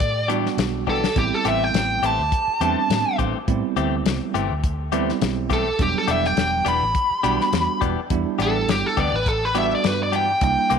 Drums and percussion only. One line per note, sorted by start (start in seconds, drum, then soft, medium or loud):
0.00 kick loud
0.00 closed hi-hat medium
0.30 closed hi-hat medium
0.46 snare soft
0.58 snare medium
0.58 closed hi-hat medium
0.87 kick medium
1.04 snare medium
1.16 kick loud
1.16 closed hi-hat medium
1.45 closed hi-hat medium
1.74 snare loud
1.74 closed hi-hat medium
2.03 closed hi-hat medium
2.32 kick loud
2.32 closed hi-hat medium
2.61 closed hi-hat medium
2.90 snare medium
2.90 closed hi-hat medium
3.19 kick medium
3.19 closed hi-hat medium
3.48 kick loud
3.48 closed hi-hat medium
3.77 closed hi-hat soft
4.06 snare loud
4.06 closed hi-hat medium
4.35 closed hi-hat medium
4.64 kick loud
4.64 closed hi-hat medium
4.92 closed hi-hat medium
5.09 snare soft
5.21 snare loud
5.21 closed hi-hat medium
5.50 kick medium
5.50 closed hi-hat medium
5.79 kick loud
5.79 closed hi-hat medium
6.08 closed hi-hat medium
6.25 snare soft
6.37 snare loud
6.37 closed hi-hat medium
6.66 closed hi-hat medium
6.95 kick loud
6.95 closed hi-hat medium
7.24 closed hi-hat medium
7.41 snare soft
7.53 snare medium
7.53 closed hi-hat medium
7.82 kick medium
7.82 closed hi-hat medium
8.10 kick loud
8.10 closed hi-hat medium
8.40 closed hi-hat medium
8.69 snare medium
8.69 closed hi-hat medium
8.97 kick medium
8.97 closed hi-hat medium
9.26 kick loud
9.26 closed hi-hat medium
9.55 closed hi-hat medium
9.84 snare loud
9.84 closed hi-hat medium
10.13 closed hi-hat medium
10.41 kick loud
10.41 closed hi-hat medium
10.70 closed hi-hat medium